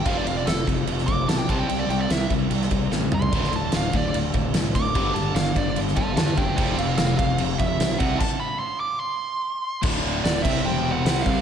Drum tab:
CC |x-x-x-x-x-x-x-x-|x-x-x-x-x-x-----|x-x-x-x-x-x-x-x-|x-x-x-x-x-x-x-x-|
HH |----------------|----------------|----------------|----------------|
SD |----o----o--o---|----o----o--o---|-o--o-------o---|----o----o--o---|
T1 |----------------|-------------o--|----------------|----------------|
T2 |----------------|--------------o-|----------------|----------------|
FT |----------------|---------------o|----------------|----------------|
BD |o-----o---o---o-|------o---o-----|o-----o---o---o-|o-----o---o---o-|

CC |x-x-x-x-x-x-x-x-|x---------------|x-----x---------|
HH |----------------|----------------|----o-------o---|
SD |----o-------o---|----------------|----o-------o---|
T1 |----------------|----------------|----------------|
T2 |----------------|----------------|----------------|
FT |----------------|----------------|----------------|
BD |o-----o---o---o-|o---------------|o-----o-------o-|